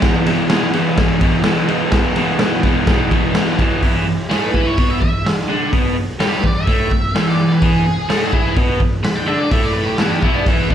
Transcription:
0.01 overdriven electric guitar E2 B2 E3, kick, snare, ride
0.26 overdriven electric guitar E2 B2 E3, ride
0.50 overdriven electric guitar E2 B2 E3, snare, ride
0.73 overdriven electric guitar E2 B2 E3, ride
0.98 overdriven electric guitar E2 B2 E3, kick, snare, ride
1.21 overdriven electric guitar E2 B2 E3, kick, ride
1.44 overdriven electric guitar E2 B2 E3, snare, ride
1.68 overdriven electric guitar E2 B2 E3, ride
1.92 overdriven electric guitar E2 B2 E3, kick, snare, ride
2.16 overdriven electric guitar E2 B2 E3, ride
2.39 overdriven electric guitar E2 B2 E3, snare, ride
2.63 overdriven electric guitar E2 B2 E3, kick, ride
2.87 overdriven electric guitar E2 B2 E3, kick, snare, ride
3.11 overdriven electric guitar E2 B2 E3, kick, ride
3.35 overdriven electric guitar E2 B2 E3, snare, ride
3.59 overdriven electric guitar E2 B2 E3, kick, ride
3.82 overdriven electric guitar E2 E3, kick, open hi-hat
4.06 overdriven electric guitar E2
4.30 overdriven electric guitar A2 A3, lead electric guitar G#4, snare, open hi-hat
4.44 lead electric guitar B4
4.54 overdriven electric guitar E3 E4, kick
4.67 lead electric guitar C#5
4.78 overdriven electric guitar B2 B3, kick, open hi-hat
4.90 lead electric guitar E5
5.01 overdriven electric guitar E2, lead electric guitar E5, kick
5.26 overdriven electric guitar E2, snare, open hi-hat
5.49 overdriven electric guitar D3 D4
5.73 overdriven electric guitar B2 B3, kick, open hi-hat
5.96 muted overdriven electric guitar stroke
6.20 overdriven electric guitar G2 G3, lead electric guitar G4, snare, open hi-hat
6.33 lead electric guitar B4
6.44 overdriven electric guitar E2, lead electric guitar D5, kick
6.55 lead electric guitar E5
6.67 overdriven electric guitar A2 A3, kick, open hi-hat
6.91 overdriven electric guitar E2, kick
7.15 overdriven electric guitar E2 E3, snare, open hi-hat
7.29 lead electric guitar D5
7.52 lead electric guitar B4
7.62 overdriven electric guitar E2 E3, lead electric guitar G#4, kick, open hi-hat
7.86 overdriven electric guitar E2
8.09 overdriven electric guitar A2 A3, snare, open hi-hat
8.33 overdriven electric guitar E3 E4, kick
8.57 overdriven electric guitar B2 B3, kick, open hi-hat
8.80 overdriven electric guitar E2, kick
9.03 overdriven electric guitar E2, lead electric guitar B5, snare, open hi-hat
9.15 lead electric guitar G5
9.27 overdriven electric guitar D3 D4, lead electric guitar E5
9.38 lead electric guitar D5
9.51 overdriven electric guitar A2 A3, lead electric guitar E5, kick, open hi-hat
9.64 lead electric guitar D5
9.73 lead electric guitar B4
9.86 lead electric guitar G4
9.98 overdriven electric guitar E2 E3, lead electric guitar B4, snare, open hi-hat
10.10 lead electric guitar G4
10.22 overdriven electric guitar B2 B3, lead electric guitar E4, kick
10.35 lead electric guitar D4
10.46 overdriven electric guitar E2 E3, lead electric guitar E4, kick, open hi-hat
10.70 overdriven electric guitar D3, lead electric guitar E4, kick

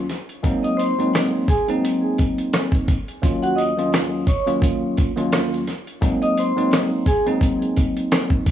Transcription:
0.09 snare, closed hi-hat, sleigh bells
0.29 closed hi-hat
0.43 tine electric piano G#2 F#3 A#3 C4 D#4, kick, closed hi-hat, sleigh bells
0.63 vibraphone D#5 D#6, closed hi-hat
0.77 vibraphone C5 C6, closed hi-hat, sleigh bells
0.98 tine electric piano G#2 F#3 A#3 C4 D#4, closed hi-hat
1.13 cross-stick, snare, closed hi-hat, sleigh bells
1.48 vibraphone G#4 G#5, kick, closed hi-hat, sleigh bells
1.68 tine electric piano G#2 F#3 A#3 C4 D#4, closed hi-hat
1.84 closed hi-hat, sleigh bells
2.18 kick, closed hi-hat, sleigh bells
2.38 closed hi-hat
2.53 cross-stick, snare, closed hi-hat, sleigh bells
2.72 kick, closed hi-hat
2.88 kick, closed hi-hat, sleigh bells
3.08 closed hi-hat
3.22 tine electric piano D#2 F#3 A#3 C#4 F4, kick, closed hi-hat, sleigh bells
3.42 vibraphone F#4 F#5, closed hi-hat
3.55 vibraphone D#5 D#6, closed hi-hat, sleigh bells
3.77 tine electric piano D#2 F#3 A#3 C#4 F4, closed hi-hat
3.92 cross-stick, snare, closed hi-hat, sleigh bells
4.27 vibraphone C#5 C#6, kick, closed hi-hat, sleigh bells
4.46 tine electric piano D#2 F#3 A#3 C#4 F4, closed hi-hat
4.62 kick, closed hi-hat, sleigh bells
4.97 kick, closed hi-hat, sleigh bells
5.16 tine electric piano D#2 F#3 A#3 C#4 F4, closed hi-hat
5.32 cross-stick, snare, closed hi-hat, sleigh bells
5.54 closed hi-hat
5.67 snare, closed hi-hat, sleigh bells
5.87 closed hi-hat
6.01 tine electric piano G#2 F#3 A#3 C4 D#4, kick, closed hi-hat, sleigh bells
6.22 vibraphone D#5 D#6, closed hi-hat
6.37 vibraphone C5 C6, closed hi-hat, sleigh bells
6.56 tine electric piano G#2 F#3 A#3 C4 D#4, closed hi-hat
6.71 cross-stick, snare, closed hi-hat, sleigh bells
7.06 vibraphone G#4 G#5, kick, closed hi-hat, sleigh bells
7.26 tine electric piano G#2 F#3 A#3 C4 D#4, closed hi-hat
7.41 kick, closed hi-hat, sleigh bells
7.62 closed hi-hat
7.76 kick, closed hi-hat, sleigh bells
7.97 closed hi-hat
8.12 cross-stick, snare, closed hi-hat, sleigh bells
8.30 kick
8.46 kick, closed hi-hat, sleigh bells

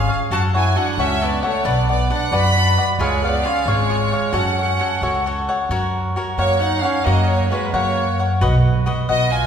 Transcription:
Already playing: trumpet C#4, violin section F5
0.09 cavaquinho G#4 C#5 F5
0.31 upright bass F#2, cavaquinho F#4 A4 C#5 F#5, trumpet F#4, violin section A5
0.54 trumpet E4, cavaquinho A4 C#5 F#5, violin section G#5
0.76 trumpet D4, cavaquinho F#4 A4 C#5 F#5, violin section F#5
0.97 upright bass C#2, trumpet C#4, cavaquinho F#4 A4 C#5 F#5, violin section E5
1.21 trumpet B3, cavaquinho F#4 A4 C#5 F#5, violin section D5
1.43 trumpet A3, cavaquinho A4 C#5 F#5, violin section C#5
1.65 upright bass B1, trumpet B3, cavaquinho D4 B4 D5 F#5, violin section D5
1.89 trumpet B3, cavaquinho B4 D5 F#5, violin section D5
2.10 cavaquinho D4 B4 D5 F#5, trumpet D4, violin section F#5
2.31 upright bass F#2, cavaquinho D4 B4 D5 F#5, trumpet F#4, violin section B5
2.56 cavaquinho D4 B4 D5 F#5
2.78 cavaquinho B4 D5 F#5
2.99 upright bass C#2, trumpet G#3, cavaquinho F4 G#4 C#5 F5, violin section C#5
3.23 trumpet B3, cavaquinho G#4 C#5 F5, violin section D5
3.45 trumpet C#4, cavaquinho F4 G#4 C#5 F5, violin section F5
3.66 upright bass G#1, trumpet G#3, cavaquinho F4 G#4 C#5 F5, violin section C#5
3.90 cavaquinho F4 G#4 C#5 F5
4.12 cavaquinho G#4 C#5 F5
4.33 upright bass F#2, trumpet C#4, cavaquinho F#4 A4 C#5 F#5, violin section F#5
4.58 cavaquinho A4 C#5 F#5
4.80 cavaquinho F#4 A4 C#5 F#5
5.01 upright bass C#2, cavaquinho F#4 A4 C#5 F#5
5.26 cavaquinho F#4 A4 C#5 F#5
5.49 cavaquinho A4 C#5 F#5
5.69 upright bass F#2, cavaquinho F#4 A#4 C#5 F#5
6.16 cavaquinho F#4 A#4 C#5 F#5
6.38 upright bass F#2, trumpet A#3, cavaquinho F#4 A#4 C#5 F#5, violin section C#5
6.60 trumpet D#4, violin section F#5
6.82 trumpet C#4, cavaquinho A#4 C#5 F#5, violin section F5
7.03 upright bass F#2, trumpet A#3, cavaquinho F#4 A#4 C#5 F#5, violin section D#5
7.27 trumpet A#3, violin section C#5
7.48 trumpet G#3, cavaquinho F#4, violin section B4
7.53 cavaquinho A#4 C#5 F#5
7.72 upright bass F#2, trumpet A#3, cavaquinho F#4 A#4 C#5 F#5, violin section C#5
8.19 cavaquinho A#4 C#5 F#5
8.41 upright bass B1, cavaquinho F#4 B4 D#5 F#5
8.86 cavaquinho F#4 B4 D#5 F#5
9.08 upright bass B1, trumpet B3, cavaquinho F#4 B4 D#5 F#5, violin section D#5
9.31 trumpet F4, violin section G#5

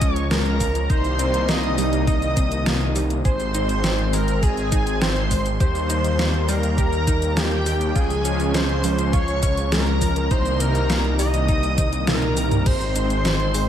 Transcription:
Already playing: detuned saw bass C#2, analog synth pad F3 G#3 C#4, analog synth lead D#5, string machine D#6
0.02 synth arpeggio sound C#4, kick, closed hi-hat, shaker
0.14 analog synth lead C#5, string machine C#6, closed hi-hat, shaker
0.31 synth arpeggio sound G#3, analog synth lead A#4, string machine A#5, snare, closed hi-hat, shaker
0.46 closed hi-hat
0.60 synth arpeggio sound F3, kick, open hi-hat, shaker
0.75 closed hi-hat, shaker
0.90 detuned saw bass C2, analog synth pad C3 D#3 G3 A#3 D#4, synth arpeggio sound D#4, analog synth lead C5, string machine C6, kick, closed hi-hat, shaker
1.05 closed hi-hat, shaker
1.19 synth arpeggio sound C4, analog synth lead C5, string machine C6, closed hi-hat, shaker
1.34 closed hi-hat, shaker
1.49 synth arpeggio sound A#3, analog synth lead D#5, string machine D#6, snare, closed hi-hat, shaker
1.63 closed hi-hat
1.78 synth arpeggio sound G3, open hi-hat, shaker
1.93 closed hi-hat, shaker
2.07 synth arpeggio sound D#4, analog synth lead D#5, string machine D#6, kick, closed hi-hat, shaker
2.22 closed hi-hat, shaker
2.37 synth arpeggio sound C4, kick, closed hi-hat, shaker
2.52 closed hi-hat, shaker
2.66 synth arpeggio sound A#3, snare, closed hi-hat, shaker
2.81 closed hi-hat
2.96 synth arpeggio sound G3, open hi-hat, shaker
3.10 closed hi-hat, shaker
3.25 detuned saw bass G#1, analog synth pad G#3 C4, synth arpeggio sound G#4, analog synth lead C5, string machine C6, kick, closed hi-hat, shaker
3.40 closed hi-hat, shaker
3.54 synth arpeggio sound D#4, closed hi-hat, shaker
3.69 closed hi-hat, shaker
3.84 synth arpeggio sound C4, snare, closed hi-hat, shaker
3.99 closed hi-hat
4.13 synth arpeggio sound G#3, analog synth lead A#4, string machine A#5, open hi-hat, shaker
4.28 closed hi-hat, shaker
4.43 synth arpeggio sound G#4, analog synth lead G#4, string machine G#5, kick, closed hi-hat, shaker
4.57 closed hi-hat, shaker
4.72 synth arpeggio sound D#4, kick, closed hi-hat, shaker
4.87 closed hi-hat, shaker
5.02 synth arpeggio sound C4, analog synth lead C5, string machine C6, snare, closed hi-hat, shaker
5.16 closed hi-hat
5.31 synth arpeggio sound G#3, kick, open hi-hat, shaker
5.46 closed hi-hat, shaker
5.60 detuned saw bass D#2, analog synth pad D#3 G3 A#3, synth arpeggio sound G4, analog synth lead C5, string machine C6, kick, closed hi-hat, shaker
5.75 closed hi-hat, shaker
5.90 synth arpeggio sound D#4, closed hi-hat, shaker
6.04 closed hi-hat, shaker
6.19 synth arpeggio sound A#3, snare, closed hi-hat, shaker
6.34 closed hi-hat
6.49 synth arpeggio sound G3, analog synth lead A#4, string machine A#5, open hi-hat, shaker
6.63 closed hi-hat, shaker
6.78 synth arpeggio sound G4, analog synth lead A#4, string machine A#5, kick, closed hi-hat, shaker
6.93 closed hi-hat, shaker
7.07 synth arpeggio sound D#4, kick, closed hi-hat, shaker
7.22 closed hi-hat, shaker
7.37 synth arpeggio sound A#3, analog synth lead G4, string machine G5, snare, closed hi-hat, shaker
7.52 closed hi-hat
7.66 synth arpeggio sound G3, open hi-hat, shaker
7.81 closed hi-hat, shaker
7.96 detuned saw bass C#2, analog synth pad F3 G#3 C#4, synth arpeggio sound F4, analog synth lead G#4, string machine G#5, kick, closed hi-hat, shaker
8.10 closed hi-hat, shaker
8.25 synth arpeggio sound C#4, closed hi-hat, shaker
8.40 closed hi-hat, shaker
8.54 synth arpeggio sound G#3, analog synth lead C5, string machine C6, snare, closed hi-hat, shaker
8.69 closed hi-hat
8.84 synth arpeggio sound F3, open hi-hat, shaker
8.99 closed hi-hat, shaker
9.13 synth arpeggio sound F4, analog synth lead C#5, string machine C#6, kick, closed hi-hat, shaker
9.28 closed hi-hat, shaker
9.43 synth arpeggio sound C#4, kick, closed hi-hat, shaker
9.57 closed hi-hat, shaker
9.72 synth arpeggio sound G#3, analog synth lead A#4, string machine A#5, snare, closed hi-hat, shaker
9.87 closed hi-hat
10.01 synth arpeggio sound F3, kick, open hi-hat, shaker
10.16 closed hi-hat, shaker
10.31 detuned saw bass C2, analog synth pad C3 D#3 G3 A#3 D#4, synth arpeggio sound D#4, analog synth lead C5, string machine C6, kick, closed hi-hat, shaker
10.46 closed hi-hat, shaker
10.60 synth arpeggio sound C4, analog synth lead A#4, string machine A#5, closed hi-hat, shaker
10.75 closed hi-hat, shaker
10.90 synth arpeggio sound A#3, snare, closed hi-hat, shaker
11.04 closed hi-hat
11.19 synth arpeggio sound G3, analog synth lead D#5, string machine D#6, open hi-hat, shaker
11.34 closed hi-hat, shaker
11.48 synth arpeggio sound D#4, kick, closed hi-hat, shaker
11.63 closed hi-hat, shaker
11.78 synth arpeggio sound C4, kick, closed hi-hat, high tom, shaker
11.93 closed hi-hat, shaker
12.07 synth arpeggio sound A#3, analog synth lead A#4, string machine A#5, snare, closed hi-hat, mid tom, shaker
12.22 closed hi-hat, mid tom
12.37 synth arpeggio sound G3, open hi-hat, shaker
12.51 closed hi-hat, mid tom, shaker
12.66 detuned saw bass G#1, analog synth pad G#3 C4, synth arpeggio sound G#4, analog synth lead C5, string machine C6, kick, closed hi-hat, crash, shaker
12.81 closed hi-hat, shaker
12.96 synth arpeggio sound D#4, closed hi-hat, shaker
13.10 closed hi-hat, shaker
13.25 synth arpeggio sound C4, snare, closed hi-hat, shaker
13.40 closed hi-hat
13.54 synth arpeggio sound G#3, open hi-hat, shaker

